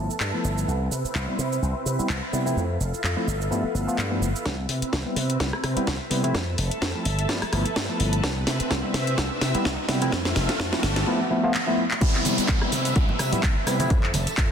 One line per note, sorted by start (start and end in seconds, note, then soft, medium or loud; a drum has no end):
0.00 0.66 A4 medium
0.00 2.53 B4 medium
0.00 0.66 E5 medium
0.00 0.66 A5 medium
0.10 muted slap bass stroke soft
0.10 cabasa soft
0.20 0.31 G2 medium
0.20 clap loud
0.20 cabasa soft
0.33 0.66 F3 medium
0.33 0.66 A3 medium
0.33 0.67 B3 medium
0.33 0.67 E4 medium
0.44 0.64 G1 medium
0.44 cabasa medium
0.58 cabasa soft
0.68 0.87 C2 medium
0.68 2.55 C4 medium
0.68 2.55 E5 medium
0.68 cabasa soft
0.91 1.02 C3 medium
0.91 cabasa medium
1.04 muted slap bass stroke soft
1.04 cabasa soft
1.15 1.26 C2 medium
1.15 clap loud
1.15 cabasa soft
1.28 1.37 G3 medium
1.28 1.38 B3 medium
1.28 1.38 C4 medium
1.28 1.38 E4 medium
1.39 1.58 C3 medium
1.39 cabasa medium
1.52 cabasa soft
1.62 1.73 C2 medium
1.62 cabasa soft
1.86 1.96 C3 medium
1.86 cabasa medium
1.98 2.08 G3 medium
1.98 2.08 B3 medium
1.98 2.08 C4 medium
1.98 2.09 E4 medium
1.98 muted slap bass stroke soft
1.98 cabasa soft
2.09 2.20 C2 medium
2.09 clap loud
2.09 cabasa soft
2.33 2.53 C3 medium
2.33 2.44 G3 medium
2.33 2.44 B3 medium
2.33 2.44 C4 medium
2.33 2.44 E4 loud
2.33 cabasa medium
2.45 2.62 F3 medium
2.45 2.62 A3 medium
2.45 2.62 C4 medium
2.45 2.62 E4 loud
2.45 cabasa soft
2.57 2.76 F2 medium
2.57 4.44 A4 medium
2.57 4.44 E5 medium
2.57 3.26 F5 medium
2.57 cabasa soft
2.80 2.91 F1 medium
2.80 cabasa medium
2.93 muted slap bass stroke soft
2.93 cabasa soft
3.04 3.14 F2 medium
3.04 clap loud
3.04 cabasa soft
3.16 3.26 F3 medium
3.16 3.26 A3 medium
3.16 3.26 C4 medium
3.16 3.26 E4 medium
3.27 3.47 G1 medium
3.27 4.45 B4 medium
3.27 4.44 F5 medium
3.27 cabasa medium
3.41 cabasa soft
3.50 3.62 G2 medium
3.50 3.63 F3 medium
3.50 3.63 A3 medium
3.50 3.63 B3 medium
3.50 3.63 E4 loud
3.50 cabasa soft
3.64 muted slap bass stroke soft
3.74 3.85 G1 medium
3.74 3.84 F3 medium
3.74 3.84 A3 medium
3.74 3.85 B3 medium
3.74 3.85 E4 medium
3.74 cabasa medium
3.87 3.97 F3 medium
3.87 3.97 A3 medium
3.87 3.97 B3 medium
3.87 3.97 F4 medium
3.87 muted slap bass stroke soft
3.87 cabasa soft
3.98 4.23 G2 medium
3.98 clap loud
3.98 cabasa soft
4.11 4.27 F3 medium
4.11 4.28 A3 medium
4.11 4.28 B3 medium
4.11 4.28 E4 medium
4.22 4.32 G1 medium
4.22 cabasa medium
4.36 cabasa soft
4.45 4.65 C2 medium
4.45 6.33 C4 medium
4.45 6.33 B4 medium
4.45 6.33 E5 medium
4.45 kick loud
4.45 snare soft
4.45 closed hi-hat soft
4.45 riser medium
4.69 4.80 C3 medium
4.69 open hi-hat medium
4.82 muted slap bass stroke soft
4.82 closed hi-hat medium
4.93 5.03 C2 medium
4.93 kick loud
4.93 snare soft
4.93 closed hi-hat medium
5.05 5.15 G3 medium
5.05 5.15 B3 medium
5.05 5.15 C4 medium
5.05 5.15 E4 medium
5.16 5.36 C3 medium
5.16 open hi-hat loud
5.30 closed hi-hat medium
5.40 5.51 C2 loud
5.40 kick loud
5.40 snare soft
5.40 closed hi-hat medium
5.53 cross-stick medium
5.64 5.74 C3 medium
5.64 cross-stick medium
5.64 open hi-hat loud
5.76 5.86 G3 medium
5.76 5.86 B3 medium
5.76 5.86 C4 medium
5.76 5.86 E4 loud
5.76 muted slap bass stroke soft
5.76 closed hi-hat medium
5.87 5.98 C2 medium
5.87 kick loud
5.87 snare medium
5.87 closed hi-hat medium
6.10 6.31 C3 medium
6.10 6.22 G3 medium
6.10 6.22 B3 medium
6.10 6.22 C4 medium
6.10 6.22 E4 loud
6.10 open hi-hat loud
6.23 6.40 F3 medium
6.23 6.40 A3 medium
6.23 6.40 C4 medium
6.23 6.40 E4 loud
6.23 closed hi-hat medium
6.34 6.54 F2 medium
6.34 7.04 A4 medium
6.34 8.21 E5 medium
6.34 8.21 A5 medium
6.34 kick loud
6.34 snare medium
6.34 closed hi-hat medium
6.58 6.69 F1 medium
6.58 open hi-hat loud
6.71 muted slap bass stroke soft
6.71 closed hi-hat medium
6.82 6.92 F2 medium
6.82 kick loud
6.82 snare medium
6.82 closed hi-hat soft
6.95 7.04 F3 medium
6.95 7.04 A3 medium
6.95 7.04 C4 medium
6.95 7.04 E4 medium
7.05 7.25 G1 loud
7.05 8.22 A4 medium
7.05 10.09 B4 medium
7.05 open hi-hat loud
7.19 closed hi-hat medium
7.29 7.40 G2 loud
7.29 7.41 F3 loud
7.29 7.41 A3 medium
7.29 7.41 B3 medium
7.29 7.41 E4 loud
7.29 kick loud
7.29 snare medium
7.29 closed hi-hat medium
7.42 muted slap bass stroke soft
7.42 cross-stick medium
7.42 open hi-hat medium
7.52 7.63 G1 medium
7.52 7.64 F3 medium
7.52 7.64 A3 medium
7.52 7.64 B3 medium
7.52 7.65 E4 loud
7.52 cross-stick medium
7.52 open hi-hat loud
7.66 muted slap bass stroke soft
7.66 closed hi-hat medium
7.76 7.87 G2 medium
7.76 kick loud
7.76 snare medium
7.76 closed hi-hat medium
7.89 8.22 F3 medium
7.89 8.22 A3 medium
7.89 8.22 B3 medium
7.89 8.22 E4 medium
8.00 8.20 G1 medium
8.00 open hi-hat loud
8.13 closed hi-hat medium
8.23 8.43 C2 medium
8.23 10.10 C4 medium
8.23 10.10 E5 medium
8.23 kick loud
8.23 snare medium
8.23 closed hi-hat soft
8.47 8.58 C3 medium
8.47 snare medium
8.47 open hi-hat loud
8.60 muted slap bass stroke soft
8.60 closed hi-hat medium
8.71 8.81 C2 medium
8.71 kick loud
8.71 snare medium
8.71 closed hi-hat soft
8.83 8.93 G3 medium
8.83 8.93 B3 medium
8.83 8.93 C4 medium
8.83 8.93 E4 medium
8.94 9.14 C3 loud
8.94 snare medium
8.94 open hi-hat loud
9.07 closed hi-hat medium
9.18 9.29 C2 loud
9.18 kick loud
9.18 snare medium
9.18 closed hi-hat soft
9.41 9.52 C3 medium
9.41 snare medium
9.41 open hi-hat loud
9.54 9.64 G3 medium
9.54 9.64 B3 medium
9.54 9.64 C4 medium
9.54 9.64 E4 loud
9.54 muted slap bass stroke soft
9.54 closed hi-hat medium
9.65 9.76 C2 medium
9.65 kick loud
9.65 snare medium
9.65 closed hi-hat medium
9.88 10.08 C3 medium
9.88 10.00 G3 medium
9.88 10.00 B3 medium
9.88 10.00 C4 medium
9.88 10.00 E4 loud
9.88 snare medium
9.88 open hi-hat loud
10.01 10.18 F3 medium
10.01 10.18 A3 medium
10.01 10.18 C4 medium
10.01 10.18 E4 loud
10.01 closed hi-hat medium
10.12 10.32 F2 medium
10.12 10.82 A4 medium
10.12 11.06 E5 medium
10.12 11.06 F5 medium
10.12 kick loud
10.12 snare medium
10.12 closed hi-hat soft
10.25 snare medium
10.36 10.47 F1 loud
10.36 snare medium
10.36 open hi-hat loud
10.49 muted slap bass stroke soft
10.49 snare medium
10.49 closed hi-hat medium
10.60 10.70 F2 medium
10.60 kick loud
10.60 snare loud
10.60 closed hi-hat soft
10.72 10.82 F3 medium
10.72 10.82 A3 medium
10.72 10.82 C4 medium
10.72 10.82 E4 medium
10.72 snare medium
10.83 11.03 G1 loud
10.83 11.07 A4 medium
10.83 11.07 B4 medium
10.83 snare loud
10.83 open hi-hat loud
10.96 snare medium
10.96 closed hi-hat medium
11.07 11.19 F3 loud
11.07 11.19 A3 medium
11.07 11.19 B3 medium
11.07 11.19 E4 loud
11.30 11.40 F3 medium
11.30 11.40 A3 medium
11.30 11.41 B3 medium
11.30 11.41 E4 medium
11.43 11.53 F3 loud
11.43 11.53 A3 medium
11.43 11.53 B3 medium
11.43 11.53 F4 loud
11.54 clap loud
11.67 11.83 F3 medium
11.67 11.83 A3 medium
11.67 11.84 B3 medium
11.67 11.84 E4 loud
11.91 clap medium
12.01 12.21 C2 medium
12.01 12.56 G3 loud
12.01 12.56 B3 medium
12.01 12.57 C4 medium
12.01 12.57 E4 loud
12.01 13.89 B4 medium
12.01 13.89 E5 medium
12.01 kick loud
12.01 closed hi-hat medium
12.01 crash loud
12.01 tambourine soft
12.01 downlifter medium
12.01 cabasa soft
12.15 clap soft
12.25 12.36 C3 medium
12.25 open hi-hat loud
12.25 tambourine medium
12.25 high conga medium
12.25 cabasa medium
12.38 muted slap bass stroke soft
12.38 closed hi-hat medium
12.38 tambourine medium
12.38 cabasa soft
12.48 12.59 C2 medium
12.48 kick loud
12.48 clap loud
12.48 closed hi-hat medium
12.48 tambourine soft
12.48 cabasa soft
12.61 12.71 G3 medium
12.61 12.71 B3 medium
12.61 12.71 C4 medium
12.61 12.71 E4 medium
12.61 cross-stick medium
12.61 high conga medium
12.72 12.92 C3 loud
12.72 open hi-hat loud
12.72 tambourine loud
12.72 cabasa medium
12.85 closed hi-hat medium
12.85 tambourine medium
12.85 cabasa soft
12.96 13.07 C2 loud
12.96 kick loud
12.96 closed hi-hat medium
12.96 tambourine soft
12.96 cabasa soft
13.09 high conga loud
13.09 low conga medium
13.19 13.30 C3 medium
13.19 cross-stick medium
13.19 open hi-hat loud
13.19 tambourine loud
13.19 cabasa medium
13.32 13.42 G3 loud
13.32 13.42 B3 medium
13.32 13.42 C4 medium
13.32 13.42 E4 loud
13.32 muted slap bass stroke soft
13.32 closed hi-hat medium
13.32 tambourine medium
13.32 low conga medium
13.32 cabasa soft
13.43 13.54 C2 medium
13.43 kick loud
13.43 clap loud
13.43 closed hi-hat medium
13.43 tambourine soft
13.43 high conga medium
13.43 cabasa soft
13.66 13.86 C3 medium
13.66 13.78 G3 medium
13.66 13.78 B3 medium
13.66 13.78 C4 medium
13.66 13.78 E4 loud
13.66 cross-stick medium
13.66 open hi-hat loud
13.66 tambourine loud
13.66 cabasa medium
13.79 13.96 F3 loud
13.79 13.96 A3 medium
13.79 13.96 C4 medium
13.79 13.96 E4 loud
13.79 closed hi-hat medium
13.79 tambourine medium
13.79 high conga medium
13.79 cabasa soft
13.90 14.10 F2 medium
13.90 14.51 A4 medium
13.90 14.51 E5 medium
13.90 14.51 A5 loud
13.90 kick loud
13.90 closed hi-hat medium
13.90 tambourine soft
13.90 cabasa soft
14.03 clap soft
14.14 14.25 F1 medium
14.14 open hi-hat loud
14.14 tambourine medium
14.14 high conga loud
14.14 cabasa medium
14.27 muted slap bass stroke soft
14.27 closed hi-hat medium
14.27 tambourine medium
14.27 cabasa soft
14.37 14.48 F2 medium
14.37 kick loud
14.37 clap loud
14.37 closed hi-hat medium
14.37 tambourine soft
14.37 cabasa soft